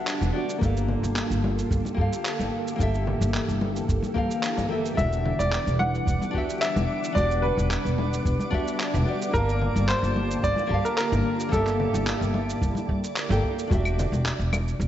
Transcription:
Already playing: string machine D3 G3 B3 D4 F#5, nylon-string guitar D4 F#4 G4 E5
0.07 clap, shaker
0.21 upright bass E1, high conga, shaker
0.33 nylon-string guitar D4 F#4 G4 D5
0.49 shaker
0.58 upright bass G1, nylon-string guitar A#3 G4, string machine A#3 F4 G4 A4, kick, high conga
0.63 nylon-string guitar A4 F5, shaker
0.77 shaker
0.88 low conga
1.03 upright bass G1, high conga, shaker
1.16 clap, shaker
1.30 upright bass G1, shaker
1.44 high conga
1.59 shaker
1.71 upright bass G1, kick, shaker
1.85 high conga, shaker
1.94 upright bass G2, nylon-string guitar A#3 G4, kick
1.99 nylon-string guitar A4 F5
2.13 shaker
2.25 clap, shaker
2.39 upright bass G1, high conga, shaker
2.68 shaker
2.76 upright bass G1, string machine E3, nylon-string guitar A#3 G4, kick, high conga
2.80 nylon-string guitar A4 E5, shaker
2.95 shaker
3.07 low conga
3.21 upright bass G1, high conga, shaker
3.34 clap, shaker
3.49 upright bass G1, shaker
3.61 high conga
3.76 shaker
3.89 upright bass G1, kick, shaker
4.03 high conga, shaker
4.14 upright bass G2, nylon-string guitar A#3 G4 A4 F5, kick
4.31 shaker
4.43 clap, shaker
4.58 upright bass G1, high conga, shaker
4.69 nylon-string guitar A#3 G4 A4 E5
4.86 shaker
4.95 upright bass E1, string machine G3 B3 F#5, nylon-string guitar D4 F#4, synth texture D5 D6, grand piano E5, kick, high conga, shaker
5.00 nylon-string guitar G4 E5
5.13 shaker
5.26 low conga
5.39 upright bass E1, grand piano D5, high conga, shaker
5.52 clap, shaker
5.67 upright bass E1, shaker
5.79 grand piano F#5, high conga
5.95 shaker
6.07 upright bass E1, kick, shaker
6.22 high conga, shaker
6.31 upright bass E2, nylon-string guitar D4 F#4, kick
6.35 nylon-string guitar G4 E5
6.50 shaker
6.61 grand piano E5, clap, shaker
6.76 upright bass E1, high conga, shaker
7.04 shaker
7.13 upright bass E1, nylon-string guitar D4 F#4, string machine D4, grand piano D5, kick, high conga
7.17 nylon-string guitar G4 D5, shaker
7.31 shaker
7.43 grand piano B4, low conga
7.57 upright bass E1, high conga, shaker
7.71 clap, shaker
7.85 upright bass E1, shaker
7.98 high conga
8.13 shaker
8.25 upright bass E1, kick, shaker
8.40 high conga, shaker
8.51 upright bass E2, nylon-string guitar D4 F#4 G4 E5, kick
8.68 shaker
8.80 clap, shaker
8.94 upright bass E1, high conga, shaker
9.05 nylon-string guitar D4 F#4 G4 D5
9.22 shaker
9.31 upright bass G1, string machine D3 A#3 F4 G4 A5, nylon-string guitar A#3 G4, grand piano A#4, kick, high conga
9.35 nylon-string guitar F5 A5, shaker
9.49 shaker
9.62 low conga
9.76 upright bass G1, high conga, shaker
9.89 grand piano C5, clap, shaker
10.03 upright bass G1, shaker
10.16 high conga
10.31 shaker
10.43 upright bass G1, grand piano D5, kick, shaker
10.56 high conga, shaker
10.67 upright bass G2, nylon-string guitar A#3 G4, kick
10.71 nylon-string guitar F5 A5
10.85 grand piano A#4, shaker
10.98 grand piano A#4, clap, shaker
11.12 upright bass G1, high conga, shaker
11.40 shaker
11.49 upright bass G1, nylon-string guitar A#3 G4, string machine E4, grand piano A4, kick
11.53 nylon-string guitar A4 E5, high conga, low conga, shaker
11.67 clap, shaker
11.80 low conga
11.93 upright bass G1, high conga, shaker
12.07 clap, shaker
12.21 upright bass G1, shaker
12.34 high conga
12.50 shaker
12.62 upright bass G1, kick, shaker
12.75 high conga, shaker
12.89 upright bass G2, kick
13.04 shaker
13.16 clap, shaker
13.29 upright bass G1, nylon-string guitar A#3 G4 A4 G5, high conga, shaker
13.43 kick
13.59 shaker
13.67 upright bass E1, nylon-string guitar D4 F#4, kick, high conga
13.72 nylon-string guitar G4 E5, shaker
13.85 claves, shaker
13.99 low conga, shaker
14.12 upright bass E1, high conga, shaker
14.26 clap, shaker
14.39 upright bass E1, shaker
14.53 high conga, claves, shaker
14.68 shaker
14.79 upright bass E1, shaker

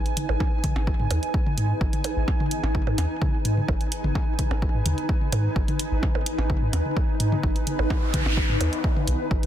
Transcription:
Already playing: ambient pad D#4 B4 G#5
0.06 closed hi-hat
0.17 closed hi-hat, high tom
0.29 sub bass G#1, percussion blips
0.40 kick, percussion blips
0.64 kick, closed hi-hat, high tom
0.76 sub bass G#1, percussion blips
0.87 kick
0.99 sub bass G#2, high tom
1.11 sub bass D#2, closed hi-hat, percussion blips
1.23 closed hi-hat
1.34 kick
1.46 high tom
1.58 sub bass G#2, closed hi-hat
1.81 sub bass G#1, kick
1.93 closed hi-hat, high tom
2.04 closed hi-hat, percussion blips
2.17 sub bass G#1
2.28 kick, percussion blips
2.40 high tom
2.51 closed hi-hat
2.64 sub bass G#1, percussion blips
2.75 kick, high tom
2.87 sub bass G#2, percussion blips
2.98 sub bass D#2, closed hi-hat, percussion blips
3.22 kick, high tom
3.45 sub bass G#2, closed hi-hat
3.57 high tom
3.68 sub bass G#1, kick, percussion blips
3.81 closed hi-hat
3.92 closed hi-hat
4.04 sub bass G#1, high tom
4.15 kick, percussion blips
4.39 kick, closed hi-hat, high tom
4.51 sub bass G#1, percussion blips
4.62 kick
4.74 sub bass G#2
4.86 sub bass D#2, closed hi-hat, high tom
4.98 closed hi-hat
5.09 kick
5.21 high tom
5.32 sub bass G#2, closed hi-hat, percussion blips
5.56 sub bass G#1, kick
5.68 closed hi-hat, high tom
5.79 closed hi-hat
5.92 sub bass G#1
6.03 kick, high tom, percussion blips
6.15 percussion blips
6.26 closed hi-hat
6.38 sub bass G#1, percussion blips
6.50 kick, high tom
6.62 sub bass G#2
6.73 sub bass D#2, closed hi-hat, percussion blips
6.85 high tom
6.97 kick, percussion blips
7.20 sub bass G#2, closed hi-hat
7.32 high tom
7.43 sub bass G#1, kick, noise sweep
7.56 closed hi-hat
7.67 closed hi-hat, high tom
7.79 sub bass G#1, percussion blips
7.90 kick, percussion blips
8.14 kick, closed hi-hat, high tom
8.26 sub bass G#1, percussion blips
8.37 kick
8.49 sub bass G#2, high tom
8.61 sub bass D#2, closed hi-hat, percussion blips
8.73 closed hi-hat
8.84 kick
8.96 high tom
9.08 sub bass B1, closed hi-hat
9.31 sub bass G#1, kick
9.43 closed hi-hat

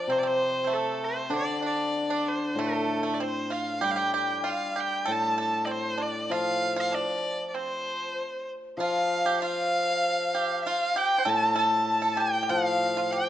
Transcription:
Already playing: hammered dulcimer F3, erhu D5
0.08 hammered dulcimer C3, pipa C4
0.12 erhu C5
0.19 erhu D5
0.23 pipa C4
0.27 erhu C5
0.64 pipa A3 C4
0.74 erhu A4
1.04 erhu C5
1.30 hammered dulcimer D3, pipa D4
1.36 erhu D5
1.62 pipa D4
1.67 erhu D5
2.10 pipa D4
2.29 erhu C5
2.55 hammered dulcimer A2, pipa A3
2.60 erhu A4
3.03 pipa A3
3.14 erhu D5
3.20 pipa C4, erhu C5
3.50 pipa F4, erhu F5
3.81 hammered dulcimer G3, pipa G4, erhu G5
3.91 erhu F5
3.96 pipa G4, erhu G5
4.14 pipa G4, erhu G5
4.44 pipa F4
4.49 erhu F5
4.76 pipa G4
4.80 erhu G5
5.06 hammered dulcimer A2, pipa A4
5.12 erhu A5
5.38 pipa A4, erhu A5
5.65 pipa C4, erhu D5
5.71 erhu C5
5.98 pipa D4
6.03 erhu D5
6.30 hammered dulcimer F3, pipa F4, erhu F5
6.76 pipa F4, erhu F5
6.92 pipa D4, erhu D5
7.48 erhu D5
7.55 pipa C4, erhu C5
8.77 hammered dulcimer F3, pipa F4, erhu F5
8.81 dizi F5
9.26 pipa G4
9.41 pipa F4, erhu F5
9.46 dizi F5
10.35 pipa G4
10.66 pipa F4, erhu F5, dizi F5
10.96 pipa G4, dizi G5, erhu G5
11.18 pipa C5
11.25 hammered dulcimer A2, pipa A4, dizi A5
11.30 erhu A5
11.56 pipa A4, erhu A5, dizi A5
12.02 pipa A4
12.17 pipa G4, erhu G5
12.22 dizi G5
12.43 pipa G4
12.49 hammered dulcimer F3, pipa F4, erhu F5, dizi F5
12.97 pipa F4
13.11 pipa G4, erhu G5, dizi G5

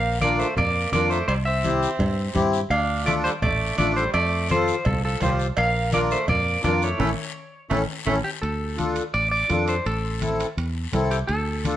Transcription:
Already playing: fingered electric bass A#1, tenor saxophone A#3, clean electric guitar F5
0.21 tenor saxophone A#3, accordion D4 F4 A#4, clean electric guitar D5, cowbell, high conga, short guiro
0.38 tenor saxophone A3, clean electric guitar C5, short guiro
0.56 fingered electric bass F2, tenor saxophone A#3, clean electric guitar D5, cowbell, high conga, low conga, long guiro
0.92 fingered electric bass F2, tenor saxophone A#3, accordion D4 F4 A#4, clean electric guitar D5, cowbell, high conga, low timbale, short guiro
1.10 tenor saxophone A3, clean electric guitar C5, short guiro
1.28 fingered electric bass C2, tenor saxophone G3, clean electric guitar C5, cowbell, long guiro
1.45 tenor saxophone C4, clean electric guitar E5
1.64 accordion C4 E4 G4, cowbell, high conga, short guiro
1.83 short guiro
1.99 fingered electric bass G2, cowbell, high conga, low conga, long guiro
2.34 fingered electric bass G2, accordion C4 E4 G4, cowbell, high conga, low conga, short guiro
2.53 short guiro
2.70 fingered electric bass D2, tenor saxophone D4, clean electric guitar F5, cowbell, high conga, long guiro
3.05 tenor saxophone A3, accordion D4 F4 A4, clean electric guitar D5, cowbell, high conga, short guiro
3.24 tenor saxophone G3, clean electric guitar C5, short guiro
3.42 fingered electric bass A1, tenor saxophone A3, clean electric guitar D5, cowbell, high conga, low conga, long guiro
3.78 fingered electric bass A1, tenor saxophone A3, accordion D4 F4 A4, clean electric guitar D5, cowbell, high conga, short guiro
3.96 tenor saxophone G3, clean electric guitar C5, short guiro
4.14 fingered electric bass F2, tenor saxophone A3, clean electric guitar D5, cowbell, high conga, long guiro
4.49 tenor saxophone F3, accordion C4 F4 A4, clean electric guitar C5, cowbell, high conga, short guiro
4.68 short guiro
4.85 fingered electric bass C2, tenor saxophone F3, clean electric guitar A4, cowbell, high conga, low conga, long guiro
5.04 tenor saxophone F3, clean electric guitar A4
5.20 fingered electric bass C2, tenor saxophone F3, accordion C4 F4 G4, clean electric guitar C5, cowbell, high conga, low conga, low timbale, short guiro
5.39 short guiro
5.57 fingered electric bass A#1, tenor saxophone A#3, clean electric guitar F5, cowbell, high conga, long guiro
5.92 tenor saxophone A#3, accordion D4 F4 A#4, clean electric guitar D5, cowbell, high conga, short guiro
6.11 tenor saxophone A3, clean electric guitar C5, short guiro
6.28 fingered electric bass F2, tenor saxophone A#3, clean electric guitar D5, cowbell, high conga, low conga, long guiro
6.63 fingered electric bass F2, tenor saxophone A#3, accordion D4 F4 A#4, clean electric guitar D5, cowbell, high conga, low timbale, short guiro
6.82 tenor saxophone A3, clean electric guitar C#5, short guiro
6.98 fingered electric bass A1, tenor saxophone A3, accordion C#4 E4 A4, high conga, high timbale, long guiro
7.70 fingered electric bass A1, tenor saxophone A3, accordion C#4 E4 A4, high conga, high timbale, long guiro
8.06 fingered electric bass A1, tenor saxophone A3, accordion C#4 E4 A4, high conga, high timbale, long guiro
8.24 clean electric guitar G4
8.42 fingered electric bass D2, clean electric guitar A4, high conga, high timbale
8.77 accordion D4 F4 A4, high conga, high timbale, short guiro
8.96 high timbale, short guiro
9.14 fingered electric bass A1, clean electric guitar D5, high conga, high timbale, long guiro
9.31 clean electric guitar D5
9.49 fingered electric bass F2, accordion D4 F4 A4, high conga, high timbale, low timbale, short guiro
9.68 clean electric guitar C5, high timbale, short guiro
9.86 fingered electric bass A1, clean electric guitar A4, high timbale, long guiro
10.21 accordion C4 E4 A4, high conga, high timbale, short guiro
10.40 high timbale, short guiro
10.57 fingered electric bass E2, high conga, high timbale, long guiro
10.93 fingered electric bass C2, accordion C4 E4 A4, high conga, high timbale, low timbale, short guiro
11.11 clean electric guitar G4, high timbale, short guiro
11.27 fingered electric bass D2, clean electric guitar A4, high conga, high timbale, long guiro
11.65 accordion D4 F4 A4, high conga, high timbale, short guiro

